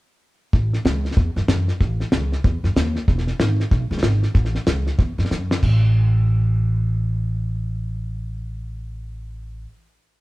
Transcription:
0.53 0.74 A1 medium
0.53 kick loud
0.53 snare soft
0.73 snare soft
0.85 1.06 C#2 medium
0.85 snare loud
0.85 hi-hat pedal medium
1.05 snare soft
1.11 snare soft
1.17 1.30 E2 loud
1.17 kick loud
1.17 snare soft
1.36 1.44 F#2 medium
1.36 snare soft
1.48 1.69 F#2 loud
1.48 snare loud
1.48 hi-hat pedal medium
1.68 snare soft
1.81 2.02 A1 medium
1.81 kick loud
1.81 snare soft
2.00 snare soft
2.12 2.34 C#2 medium
2.12 snare loud
2.12 hi-hat pedal medium
2.32 snare soft
2.44 2.57 E2 medium
2.44 kick loud
2.44 snare soft
2.64 2.72 F#2 medium
2.64 snare soft
2.76 2.97 D#2 medium
2.76 snare loud
2.76 hi-hat pedal medium
2.96 snare soft
3.08 3.29 E1 medium
3.08 kick loud
3.08 snare soft
3.18 snare soft
3.27 snare soft
3.39 3.61 G#1 medium
3.39 snare loud
3.39 hi-hat pedal medium
3.60 snare soft
3.71 3.84 B1 medium
3.71 kick loud
3.71 snare soft
3.91 3.99 C#2 medium
3.91 snare soft
3.98 snare soft
4.03 4.24 G#1 medium
4.03 snare loud
4.03 hi-hat pedal medium
4.23 snare soft
4.34 4.56 A1 medium
4.34 kick loud
4.34 snare soft
4.45 snare soft
4.55 snare soft
4.67 4.89 C#2 medium
4.67 snare loud
4.67 hi-hat pedal medium
4.87 snare soft
4.99 5.12 E2 medium
4.99 kick loud
4.99 snare soft
5.18 5.27 F#2 medium
5.18 snare soft
5.25 snare soft
5.31 5.52 F#2 medium
5.31 snare medium
5.31 hi-hat pedal medium
5.51 snare medium
5.63 9.64 A1 medium
5.63 kick medium
5.63 crash medium

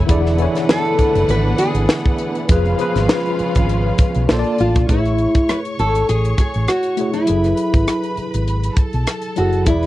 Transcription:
0.00 2.45 A3 medium
0.00 0.09 E4 medium
0.00 2.45 E4 medium
0.00 0.10 G#4 medium
0.00 0.12 A4 medium
0.07 0.45 E1 loud
0.07 2.46 D3 medium
0.07 0.30 E3 medium
0.07 2.46 E3 medium
0.07 4.24 B3 medium
0.07 2.45 D4 medium
0.07 0.31 E4 medium
0.07 0.32 G#4 medium
0.07 2.45 B4 medium
0.07 2.45 F#5 loud
0.07 kick loud
0.07 closed hi-hat medium
0.11 0.33 D5 medium
0.26 snare soft
0.38 1.26 E3 medium
0.38 1.27 E4 medium
0.38 1.28 C#5 loud
0.38 1.27 G#5 medium
0.38 closed hi-hat medium
0.55 snare soft
0.55 closed hi-hat soft
0.69 1.30 A4 loud
0.69 snare loud
0.85 closed hi-hat soft
0.99 muted fingered electric bass stroke soft
0.99 kick medium
0.99 closed hi-hat medium
1.15 1.26 F#1 medium
1.15 closed hi-hat medium
1.28 1.52 G#1 loud
1.28 1.58 B4 loud
1.28 closed hi-hat medium
1.58 4.24 G#4 loud
1.58 closed hi-hat medium
1.74 1.86 G#1 medium
1.74 closed hi-hat medium
1.89 snare loud
2.06 kick loud
2.18 closed hi-hat medium
2.35 closed hi-hat soft
2.48 2.73 F1 loud
2.48 4.26 C#3 medium
2.48 2.71 F3 medium
2.48 4.86 F3 medium
2.48 4.27 G#3 medium
2.48 4.25 C#4 medium
2.48 2.71 F4 medium
2.48 4.86 F4 medium
2.48 2.72 G#4 medium
2.48 4.25 B4 medium
2.48 2.73 B4 loud
2.48 4.25 F5 loud
2.48 kick loud
2.48 closed hi-hat loud
2.66 closed hi-hat soft
2.78 3.65 F3 loud
2.78 3.66 F4 medium
2.78 3.66 G#4 medium
2.78 3.67 B4 loud
2.78 closed hi-hat medium
2.96 3.06 G#1 loud
2.96 snare soft
2.96 closed hi-hat medium
3.09 snare loud
3.26 closed hi-hat soft
3.39 muted fingered electric bass stroke soft
3.39 closed hi-hat medium
3.55 3.90 G#1 medium
3.55 kick medium
3.55 closed hi-hat medium
3.69 closed hi-hat medium
3.98 muted fingered electric bass stroke medium
3.98 kick loud
3.98 closed hi-hat medium
4.15 4.26 B1 medium
4.15 closed hi-hat medium
4.28 4.42 A#1 medium
4.28 4.88 D3 medium
4.28 4.77 A#3 medium
4.28 4.88 A#3 medium
4.28 4.87 F4 medium
4.28 4.78 F4 medium
4.28 4.88 A4 medium
4.28 4.78 A4 medium
4.28 4.37 C5 medium
4.28 4.87 D5 medium
4.28 4.87 A5 medium
4.28 snare loud
4.39 4.83 D5 medium
4.44 closed hi-hat soft
4.58 4.76 A1 medium
4.58 4.89 F4 medium
4.58 closed hi-hat medium
4.75 4.86 A#1 medium
4.75 kick medium
4.75 closed hi-hat soft
4.88 5.25 A1 medium
4.88 5.75 A3 medium
4.88 5.50 E4 medium
4.88 5.76 E4 medium
4.88 5.76 G#4 medium
4.88 4.97 B4 medium
4.88 7.24 C#5 medium
4.88 7.23 C#6 medium
4.88 kick loud
4.88 closed hi-hat medium
4.98 5.80 C#5 medium
5.05 cross-stick soft
5.05 closed hi-hat soft
5.18 closed hi-hat medium
5.35 kick medium
5.35 cross-stick soft
5.35 closed hi-hat soft
5.49 5.58 B4 loud
5.49 cross-stick loud
5.49 closed hi-hat medium
5.65 closed hi-hat medium
5.79 6.02 G#1 medium
5.79 6.09 A4 medium
5.79 closed hi-hat medium
5.95 closed hi-hat medium
6.09 6.32 A1 medium
6.09 6.36 G#4 medium
6.09 closed hi-hat medium
6.25 closed hi-hat soft
6.38 6.67 G#4 medium
6.38 kick medium
6.38 closed hi-hat medium
6.54 6.66 A1 medium
6.54 closed hi-hat soft
6.68 7.13 F#4 medium
6.68 cross-stick loud
6.68 closed hi-hat medium
6.83 closed hi-hat medium
6.97 7.20 A3 medium
6.97 7.20 E4 medium
6.97 7.21 G#4 medium
6.97 7.22 C#5 medium
6.97 closed hi-hat medium
7.13 7.92 E4 medium
7.13 closed hi-hat soft
7.26 7.52 F#1 medium
7.26 8.14 F#3 medium
7.26 8.14 E4 medium
7.26 8.15 G#4 medium
7.26 8.75 B4 medium
7.26 8.75 B5 medium
7.26 closed hi-hat medium
7.30 8.16 A4 medium
7.44 cross-stick soft
7.44 closed hi-hat soft
7.57 closed hi-hat medium
7.74 7.85 G#1 medium
7.74 kick medium
7.74 closed hi-hat soft
7.88 cross-stick loud
7.88 closed hi-hat medium
7.92 8.29 D4 medium
8.04 closed hi-hat soft
8.17 muted fingered electric bass stroke soft
8.17 closed hi-hat medium
8.34 8.68 G#1 medium
8.34 closed hi-hat medium
8.48 closed hi-hat medium
8.63 closed hi-hat medium
8.76 9.65 A4 medium
8.76 9.65 A5 medium
8.76 muted fingered electric bass stroke soft
8.76 kick medium
8.76 closed hi-hat medium
8.93 9.04 B1 medium
8.93 closed hi-hat soft
9.07 cross-stick loud
9.07 closed hi-hat loud
9.22 closed hi-hat medium
9.36 9.67 F#1 medium
9.36 9.59 F#3 medium
9.36 9.59 E4 medium
9.36 9.65 F#4 medium
9.36 9.60 G#4 medium
9.36 9.61 A4 medium
9.36 closed hi-hat medium
9.53 closed hi-hat soft
9.65 9.86 E1 medium
9.65 9.86 E3 medium
9.65 9.86 E4 medium
9.65 9.86 G#4 medium
9.65 9.86 B4 medium
9.65 9.86 B5 medium
9.65 kick loud
9.65 closed hi-hat medium
9.70 9.86 D5 medium
9.83 cross-stick soft
9.83 closed hi-hat soft

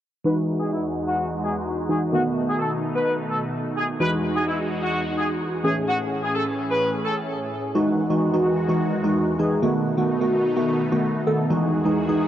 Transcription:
0.24 2.11 E2 medium
0.24 1.85 E3 medium
0.24 1.86 G#3 medium
0.24 2.11 G#3 medium
0.24 2.11 D#4 medium
0.24 1.86 D#4 medium
0.24 2.11 F#4 medium
0.24 1.86 F#4 medium
0.24 0.33 B4 medium
0.60 0.68 G#4 medium
0.72 0.80 E4 medium
1.07 1.24 F#4 medium
1.42 1.51 G#4 medium
1.89 2.12 E3 soft
1.89 2.12 G#3 soft
1.89 2.12 D#4 soft
1.89 2.12 F#4 soft
1.89 1.98 G#4 medium
2.12 3.98 B2 medium
2.12 3.96 D#3 medium
2.12 3.98 A3 medium
2.12 3.96 A3 medium
2.12 3.96 B3 medium
2.12 3.98 D#4 medium
2.12 2.21 F#4 medium
2.12 3.96 F#4 medium
2.48 2.56 G#4 medium
2.59 2.68 A4 medium
2.94 3.11 B4 medium
3.29 3.38 A4 medium
3.77 3.85 G#4 medium
4.00 5.62 E2 medium
4.00 5.61 E3 medium
4.00 5.62 G#3 medium
4.00 5.61 G#3 medium
4.00 5.62 D#4 medium
4.00 5.61 D#4 medium
4.00 5.62 F#4 medium
4.00 5.61 F#4 medium
4.00 4.08 B4 loud
4.35 4.44 G#4 medium
4.47 4.55 E4 medium
4.82 4.99 F#4 medium
5.17 5.26 G#4 medium
5.64 7.73 A2 medium
5.64 7.48 E3 medium
5.64 7.48 A3 medium
5.64 7.73 C#4 medium
5.64 7.48 C#4 medium
5.64 5.72 G#4 medium
5.64 7.73 G#4 medium
5.64 7.48 G#4 medium
5.87 5.96 F#4 medium
6.23 6.31 G#4 medium
6.34 6.43 A4 medium
6.70 6.86 B4 medium
7.04 7.13 A4 medium
7.75 9.60 E2 medium
7.75 9.61 D#3 medium
7.75 8.02 E3 medium
7.75 9.60 G#3 medium
7.75 8.02 G#3 medium
7.75 8.02 D#4 medium
7.75 9.61 F#4 medium
7.75 8.03 F#4 medium
8.10 8.28 E3 medium
8.10 8.28 G#3 medium
8.10 8.28 D#4 medium
8.10 8.29 F#4 medium
8.33 8.61 E3 medium
8.33 8.61 G#3 medium
8.33 8.61 D#4 medium
8.33 8.61 F#4 medium
8.69 8.96 E3 medium
8.69 8.96 G#3 medium
8.69 8.96 D#4 medium
8.69 8.96 F#4 medium
9.04 9.31 E3 medium
9.04 9.31 G#3 medium
9.04 9.31 D#4 medium
9.04 9.31 F#4 medium
9.39 9.57 E3 medium
9.39 9.57 G#3 medium
9.39 9.57 D#4 medium
9.39 9.58 G#4 medium
9.62 11.48 B2 medium
9.62 9.90 D#3 medium
9.62 9.90 A3 medium
9.62 11.48 A3 medium
9.62 9.90 B3 medium
9.62 11.48 D#4 medium
9.62 9.90 F#4 medium
9.97 10.16 D#3 medium
9.97 10.16 A3 medium
9.97 10.16 B3 medium
9.97 10.16 F#4 medium
10.21 10.48 D#3 medium
10.21 10.48 A3 medium
10.21 10.49 B3 medium
10.21 10.49 F#4 medium
10.56 10.84 D#3 medium
10.56 10.84 A3 medium
10.56 10.84 B3 medium
10.56 10.84 F#4 medium
10.91 11.19 D#3 medium
10.91 11.19 A3 medium
10.91 11.19 B3 medium
10.91 11.19 F#4 medium
11.26 11.45 D#3 medium
11.26 11.45 A3 medium
11.26 11.45 B3 medium
11.26 11.45 A4 medium
11.50 12.28 E2 medium
11.50 12.28 D#3 medium
11.50 11.77 E3 medium
11.50 11.77 G#3 medium
11.50 11.77 D#4 medium
11.50 12.28 F#4 medium
11.50 11.78 F#4 medium
11.50 12.28 G#4 medium
11.85 12.03 E3 medium
11.85 12.03 G#3 medium
11.85 12.03 D#4 medium
11.85 12.04 G#4 medium
12.08 12.28 E3 medium
12.08 12.28 G#3 medium
12.08 12.28 D#4 medium
12.08 12.28 G#4 medium

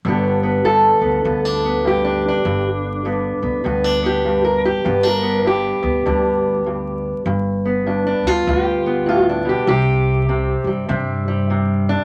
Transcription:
0.05 0.89 G1 loud
0.05 0.64 G2 medium
0.05 4.87 D3 medium
0.05 0.43 B3 soft
0.05 1.24 D4 soft
0.09 0.65 G4 soft
0.43 1.01 B3 soft
0.64 1.24 G2 medium
0.64 1.85 A4 medium
1.01 1.21 D2 medium
1.01 1.25 B3 soft
1.24 2.30 D2 medium
1.24 1.84 G2 medium
1.24 1.45 B3 soft
1.45 2.03 D4 soft
1.65 3.05 B3 soft
1.84 2.45 G2 medium
1.84 2.66 G4 medium
2.04 2.24 D4 medium
2.28 3.63 D4 medium
2.45 3.30 G1 loud
2.45 3.05 G2 medium
3.05 3.64 G2 medium
3.05 3.42 B3 soft
3.42 3.62 D2 medium
3.42 3.64 B3 soft
3.64 4.71 D2 medium
3.64 4.25 G2 medium
3.64 3.84 B3 soft
3.84 4.85 D4 soft
4.03 4.85 B3 soft
4.03 4.44 G4 medium
4.25 4.84 G2 medium
4.45 4.65 A#4 medium
4.65 5.06 G4 medium
4.84 5.71 G1 loud
4.84 5.44 G2 medium
4.84 5.03 B3 medium
5.03 6.05 D4 soft
5.07 5.47 A#4 medium
5.22 5.82 B3 soft
5.45 6.05 G2 medium
5.45 7.27 G4 medium
5.83 6.03 D2 medium
5.83 7.23 B3 soft
6.06 7.12 D2 medium
6.06 6.65 G2 medium
6.06 7.24 D4 soft
6.66 7.24 G2 medium
7.26 8.11 G1 medium
7.26 7.85 G2 medium
7.65 8.85 B3 soft
7.86 8.47 G2 medium
7.86 8.05 D4 soft
8.07 8.27 D4 medium
8.23 8.44 D2 medium
8.23 9.07 F4 medium
8.47 9.52 D2 loud
8.47 9.65 G2 medium
8.47 9.25 G4 medium
8.86 9.66 B3 soft
9.06 9.44 A2 medium
9.06 9.25 F4 medium
9.25 9.48 F4 medium
9.29 9.68 D4 medium
9.45 9.67 B2 medium
9.49 9.67 G4 medium
9.67 10.53 C2 loud
9.67 10.28 C3 medium
9.67 10.66 G4 loud
10.29 10.88 C3 medium
10.29 10.89 C4 soft
10.64 10.85 G2 medium
10.64 11.27 G3 soft
10.88 11.94 G2 loud
10.88 11.49 C3 medium
10.88 11.89 C4 soft
11.28 12.04 G3 soft
11.50 12.04 C3 medium
11.89 12.04 D4 medium

